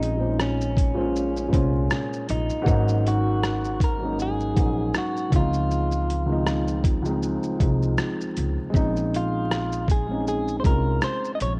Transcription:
0.00 1.49 A#1 loud
0.00 0.16 A#2 medium
0.00 0.18 G#3 medium
0.00 2.69 C4 medium
0.00 0.21 C#4 medium
0.00 0.41 D#4 medium
0.00 2.68 D#4 loud
0.00 0.23 F4 medium
0.00 closed hi-hat medium
0.00 shaker soft
0.16 0.78 A#2 medium
0.16 0.79 G#3 medium
0.16 0.80 C5 medium
0.21 0.81 C#4 medium
0.21 0.81 F4 medium
0.40 2.30 C#4 medium
0.40 cross-stick loud
0.40 shaker medium
0.61 shaker medium
0.77 kick medium
0.77 closed hi-hat medium
0.77 shaker soft
0.94 1.41 A#2 medium
0.94 1.41 G#3 medium
0.94 1.42 C5 medium
0.99 1.43 C#4 medium
0.99 1.44 F4 loud
1.16 shaker medium
1.37 shaker soft
1.48 2.43 A#2 medium
1.48 2.44 G#3 medium
1.48 2.45 C5 medium
1.53 1.87 C2 medium
1.53 2.45 C#4 medium
1.53 2.46 F4 loud
1.53 kick medium
1.53 closed hi-hat medium
1.53 shaker soft
1.90 cross-stick loud
1.90 shaker medium
2.13 shaker soft
2.29 2.48 A#1 medium
2.29 3.08 D#4 loud
2.29 closed hi-hat medium
2.29 shaker soft
2.50 shaker soft
2.62 3.71 G#2 loud
2.62 3.72 F#3 loud
2.62 3.73 A#3 loud
2.66 4.53 G#1 loud
2.66 3.73 C#4 loud
2.66 3.74 D#4 loud
2.66 kick loud
2.66 shaker medium
2.88 shaker soft
3.07 3.84 F#4 medium
3.07 closed hi-hat soft
3.07 shaker soft
3.43 cross-stick loud
3.43 shaker medium
3.65 shaker medium
3.80 4.21 A#4 medium
3.80 kick loud
3.80 closed hi-hat medium
3.80 shaker soft
3.98 4.45 G#2 medium
3.98 4.45 F#3 medium
3.98 4.46 A#3 medium
4.03 4.47 C#4 medium
4.03 4.48 D#4 medium
4.19 4.97 G#4 loud
4.19 shaker medium
4.40 shaker soft
4.54 4.90 A#1 medium
4.54 5.31 G#2 medium
4.54 5.32 F#3 medium
4.54 5.32 A#3 medium
4.54 kick medium
4.54 closed hi-hat medium
4.54 shaker soft
4.59 5.33 C#4 medium
4.59 5.34 D#4 medium
4.94 5.31 F#4 medium
4.94 cross-stick loud
4.94 shaker medium
5.17 shaker soft
5.30 6.07 C#2 medium
5.30 7.35 C#2 medium
5.30 5.39 E3 medium
5.30 6.08 G#3 medium
5.30 kick loud
5.30 closed hi-hat medium
5.30 shaker soft
5.34 6.11 F3 medium
5.34 6.09 C4 medium
5.34 6.10 D#4 medium
5.34 6.82 F4 medium
5.53 shaker soft
5.71 shaker medium
5.92 shaker soft
6.10 closed hi-hat medium
6.10 shaker soft
6.26 6.87 C#2 medium
6.26 6.34 D#3 medium
6.26 6.88 G#3 medium
6.30 6.91 F3 medium
6.30 6.89 C4 medium
6.30 6.90 D#4 medium
6.47 cross-stick loud
6.47 shaker medium
6.68 shaker medium
6.84 kick loud
6.84 closed hi-hat medium
6.84 shaker soft
7.02 7.48 C#2 medium
7.02 7.49 F3 medium
7.02 7.50 G#3 medium
7.02 shaker soft
7.07 7.51 C4 medium
7.07 7.52 D#4 medium
7.23 shaker medium
7.43 shaker soft
7.59 7.94 C2 medium
7.59 8.52 F3 medium
7.59 8.53 G#3 medium
7.59 8.54 C4 medium
7.59 kick medium
7.59 closed hi-hat medium
7.59 shaker soft
7.63 8.54 D#4 medium
7.83 shaker soft
7.98 cross-stick loud
7.98 shaker medium
8.21 shaker soft
8.37 8.55 C#2 medium
8.37 closed hi-hat medium
8.37 shaker soft
8.70 9.79 G#3 medium
8.70 9.80 C4 medium
8.70 kick loud
8.74 10.60 A#1 medium
8.74 9.81 C#4 medium
8.74 9.82 D#4 loud
8.74 shaker medium
8.97 shaker soft
9.14 9.91 F4 medium
9.14 closed hi-hat medium
9.14 shaker soft
9.51 cross-stick loud
9.51 shaker medium
9.73 shaker medium
9.88 10.27 G#4 medium
9.88 kick loud
9.88 closed hi-hat medium
9.88 shaker soft
10.06 10.52 G#3 medium
10.06 10.53 C4 medium
10.11 10.55 C#4 medium
10.11 10.56 D#4 medium
10.27 10.59 G#4 medium
10.27 shaker medium
10.48 shaker soft
10.60 11.55 G#3 medium
10.60 11.56 C4 medium
10.60 10.65 C5 medium
10.64 10.98 C2 medium
10.64 11.57 C#4 medium
10.64 11.58 F4 medium
10.64 11.00 A#4 medium
10.64 kick medium
10.64 closed hi-hat medium
10.64 shaker soft
11.02 11.35 C5 loud
11.02 cross-stick loud
11.02 shaker medium
11.25 shaker soft
11.35 11.41 D#5 medium
11.40 11.59 A#1 medium
11.40 11.52 C#5 loud
11.40 closed hi-hat medium
11.40 shaker soft

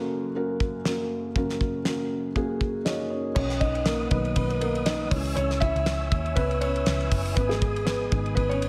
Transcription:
0.00 1.32 F#2 medium
0.00 1.32 C#3 medium
0.00 0.35 A#3 medium
0.00 0.35 C#4 medium
0.00 0.36 F#4 medium
0.00 3.37 A4 medium
0.00 0.36 A#4 medium
0.35 0.76 A#3 medium
0.35 0.76 C#4 medium
0.35 0.76 F#4 medium
0.35 0.77 A#4 medium
0.60 kick medium
0.85 1.26 A#3 medium
0.85 1.26 C#4 medium
0.85 1.27 F#4 medium
0.85 1.27 A#4 medium
0.85 snare loud
1.36 3.32 F#2 medium
1.36 3.32 C#3 medium
1.36 1.76 A#3 medium
1.36 1.77 C#4 medium
1.36 1.77 F#4 medium
1.36 1.77 A#4 medium
1.36 kick medium
1.49 snare soft
1.61 kick medium
1.85 2.26 A#3 medium
1.85 2.27 C#4 medium
1.85 2.27 F#4 medium
1.85 2.27 A#4 medium
1.85 snare medium
2.35 2.77 A#3 medium
2.35 2.77 C#4 medium
2.35 2.77 F#4 medium
2.35 2.77 G#4 medium
2.35 kick medium
2.61 kick medium
2.85 3.27 A#3 medium
2.85 3.10 C#4 medium
2.85 3.10 D#4 medium
2.85 3.27 F#4 medium
2.85 3.09 C#5 medium
2.85 3.11 D#5 medium
2.85 snare loud
3.10 3.35 C#4 soft
3.10 3.33 C#5 medium
3.35 4.07 B1 loud
3.35 3.60 C#4 medium
3.35 5.10 B4 medium
3.35 3.61 C#5 medium
3.35 5.09 D#5 medium
3.35 5.10 F#5 medium
3.35 5.09 D#6 medium
3.35 kick medium
3.35 crash medium
3.50 snare soft
3.50 ride soft
3.60 3.85 D#4 medium
3.60 3.84 D#5 medium
3.60 kick medium
3.60 ride soft
3.75 ride soft
3.85 4.10 A#3 medium
3.85 4.09 A#4 medium
3.85 snare loud
3.85 ride medium
4.11 4.34 B1 loud
4.11 4.83 D#3 medium
4.11 4.83 F#3 medium
4.11 4.18 B3 medium
4.11 4.16 B4 medium
4.11 kick medium
4.11 ride medium
4.25 ride soft
4.36 5.08 B1 loud
4.36 4.60 B3 medium
4.36 4.59 B4 medium
4.36 kick medium
4.36 ride medium
4.50 ride soft
4.61 4.85 A#3 medium
4.61 4.87 A#4 medium
4.61 ride medium
4.75 ride soft
4.86 5.10 D#4 medium
4.86 5.12 D#5 medium
4.86 snare loud
4.86 ride medium
5.11 5.35 C#2 loud
5.11 7.08 E3 medium
5.11 7.08 G#3 soft
5.11 5.35 C#4 medium
5.11 5.34 C#5 medium
5.11 7.35 C#5 medium
5.11 7.35 E5 medium
5.11 8.69 G#5 medium
5.11 7.35 E6 medium
5.11 kick loud
5.11 open hi-hat medium
5.11 ride medium
5.25 ride soft
5.36 5.73 C#2 loud
5.36 5.60 C#4 medium
5.36 5.59 C#5 loud
5.36 hi-hat pedal medium
5.36 ride medium
5.51 snare soft
5.51 ride soft
5.60 6.33 E4 medium
5.60 6.38 E5 loud
5.60 kick medium
5.60 ride medium
5.76 6.09 C#2 loud
5.76 ride soft
5.86 snare loud
5.86 ride medium
6.12 6.35 D#2 medium
6.12 kick medium
6.12 ride medium
6.26 ride soft
6.35 6.83 C#2 loud
6.35 6.60 B3 medium
6.35 6.62 B4 loud
6.35 kick medium
6.35 ride medium
6.51 ride soft
6.61 7.09 C#4 medium
6.61 7.08 C#5 loud
6.61 ride medium
6.76 ride soft
6.86 7.10 C#2 medium
6.86 snare loud
6.86 ride medium
7.01 ride soft
7.11 7.35 F#1 medium
7.11 kick medium
7.11 open hi-hat medium
7.11 ride medium
7.25 ride soft
7.35 8.08 G#1 loud
7.35 7.50 B3 medium
7.35 7.50 B4 medium
7.35 8.69 B4 medium
7.35 8.69 D#5 medium
7.35 8.69 D#6 medium
7.35 kick loud
7.35 hi-hat pedal medium
7.35 ride medium
7.49 7.85 G#3 medium
7.49 7.83 G#4 medium
7.49 snare soft
7.49 ride soft
7.62 kick medium
7.62 ride medium
7.76 ride soft
7.85 8.11 B3 medium
7.85 8.33 B4 medium
7.85 snare loud
7.85 ride medium
8.11 8.35 G#1 loud
8.11 8.69 D#3 medium
8.11 8.69 G#3 medium
8.11 8.36 B3 medium
8.11 kick loud
8.11 ride medium
8.26 ride soft
8.35 8.69 G#1 loud
8.35 8.50 B3 medium
8.35 8.49 B4 loud
8.35 kick medium
8.35 ride medium
8.49 8.69 C#4 medium
8.49 8.69 C#5 loud
8.49 ride soft
8.62 ride medium

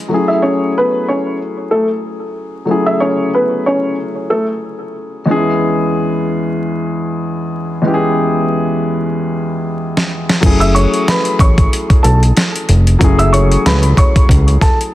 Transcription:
0.08 2.64 F#3 medium
0.08 2.64 A3 medium
0.08 2.65 C#4 medium
0.13 2.66 E4 medium
0.13 2.66 G#4 medium
0.28 0.42 E4 medium
0.28 0.41 E5 medium
0.42 0.72 C#4 medium
0.42 0.72 C#5 medium
0.78 1.06 B3 medium
0.78 1.06 B4 medium
1.08 1.38 C#4 medium
1.08 1.37 C#5 medium
1.71 1.88 A3 medium
1.71 1.87 A4 medium
2.65 5.21 F#3 medium
2.65 5.22 A3 medium
2.65 5.22 C#4 medium
2.70 5.23 E4 medium
2.70 5.24 G#4 medium
2.86 3.00 E4 medium
2.86 2.99 E5 medium
3.00 3.30 C#4 medium
3.00 3.30 C#5 medium
3.34 3.63 B3 medium
3.34 3.63 B4 medium
3.66 3.95 C#4 medium
3.66 3.95 C#5 medium
4.30 4.46 A3 medium
4.30 4.46 A4 medium
5.26 7.80 E2 medium
5.26 7.81 G#3 medium
5.26 7.81 B3 medium
5.26 7.82 C#4 medium
5.30 5.36 D4 medium
5.30 7.83 G#4 medium
5.36 7.85 E4 medium
7.82 10.37 E2 medium
7.82 10.38 G#3 medium
7.82 10.38 B3 medium
7.82 10.39 C#4 medium
7.86 10.40 E4 medium
7.86 7.93 G4 medium
7.94 10.43 G#4 medium
9.97 snare medium
10.29 snare medium
10.40 10.87 F#1 medium
10.40 12.96 F#3 medium
10.40 12.96 A3 medium
10.40 12.97 C#4 medium
10.40 kick loud
10.40 closed hi-hat loud
10.40 crash loud
10.44 12.98 E4 medium
10.44 12.98 G#4 medium
10.60 10.74 E5 medium
10.60 10.73 E6 medium
10.60 closed hi-hat medium
10.75 11.04 C#5 medium
10.75 11.04 C#6 medium
10.75 closed hi-hat medium
10.94 closed hi-hat medium
11.08 11.38 B4 medium
11.08 11.38 B5 medium
11.08 snare loud
11.08 closed hi-hat medium
11.25 closed hi-hat medium
11.39 11.68 A1 medium
11.39 11.70 C#5 medium
11.39 11.69 C#6 medium
11.39 kick medium
11.39 closed hi-hat medium
11.58 kick medium
11.58 closed hi-hat medium
11.73 closed hi-hat medium
11.90 kick medium
11.90 closed hi-hat soft
12.03 12.32 B1 loud
12.03 12.20 A4 medium
12.03 12.19 A5 medium
12.03 closed hi-hat medium
12.23 closed hi-hat medium
12.37 snare loud
12.37 closed hi-hat medium
12.56 closed hi-hat medium
12.69 12.97 F1 loud
12.69 closed hi-hat medium
12.87 closed hi-hat medium
12.99 13.57 F#1 loud
12.99 14.94 F#3 medium
12.99 14.94 A3 medium
12.99 14.94 C#4 medium
12.99 kick loud
12.99 closed hi-hat loud
13.03 14.94 E4 medium
13.03 14.94 G#4 medium
13.19 13.32 E5 medium
13.19 13.32 E6 medium
13.19 closed hi-hat medium
13.33 13.62 C#5 medium
13.33 13.62 C#6 medium
13.33 closed hi-hat medium
13.52 closed hi-hat medium
13.66 13.94 C#2 loud
13.66 13.95 B4 medium
13.66 13.95 B5 medium
13.66 snare loud
13.66 closed hi-hat medium
13.83 closed hi-hat medium
13.97 14.27 C#5 medium
13.97 14.27 C#6 medium
13.97 kick loud
13.97 closed hi-hat medium
14.16 kick medium
14.16 closed hi-hat medium
14.29 14.58 C#2 loud
14.29 kick loud
14.29 closed hi-hat medium
14.48 closed hi-hat soft
14.61 14.79 A4 medium
14.61 14.78 A5 medium
14.61 kick loud
14.61 snare soft
14.61 closed hi-hat medium
14.81 closed hi-hat medium

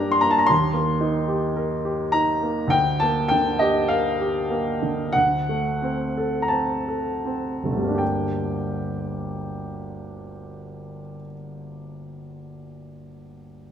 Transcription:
0.00 0.43 G2 soft
0.00 0.22 A#3 soft
0.00 0.52 D4 soft
0.00 0.52 G4 soft
0.00 0.53 A#4 soft
0.00 0.53 G5 medium
0.00 0.14 A#5 medium
0.11 0.22 C6 medium
0.21 0.49 A#3 soft
0.21 0.31 A#5 medium
0.31 0.40 A5 medium
0.39 0.49 A#5 medium
0.46 2.69 D#2 soft
0.46 2.12 C6 medium
0.74 1.17 A#3 soft
1.01 1.45 D#4 soft
1.28 1.73 G4 soft
1.56 2.03 A#4 soft
1.85 2.32 G4 soft
2.12 2.61 D#4 soft
2.12 2.72 A#5 medium
2.43 2.72 A#3 soft
2.67 5.08 D2 medium
2.67 3.01 G5 medium
3.00 3.49 A#3 soft
3.00 3.30 A5 medium
3.28 3.78 D3 soft
3.28 3.59 G5 medium
3.59 4.08 G4 soft
3.59 3.89 D#5 medium
3.88 4.39 A#4 soft
3.88 5.13 F5 medium
4.20 4.69 G4 soft
4.50 5.01 A#3 soft
4.82 5.15 D3 soft
5.12 7.69 D2 soft
5.12 6.41 F#5 medium
5.49 6.03 A3 soft
5.82 6.38 C4 soft
6.17 6.74 A4 soft
6.42 6.52 A#5 soft
6.48 7.10 C4 soft
6.48 7.99 A5 medium
6.88 7.50 A4 soft
7.25 7.86 C4 soft
7.64 11.02 G1 soft
7.64 8.01 A3 soft
7.70 11.09 D2 soft
7.77 11.15 G3 soft
7.82 11.20 A#3 soft
7.89 11.27 D4 soft
7.94 11.32 G4 soft
7.94 11.36 G5 soft

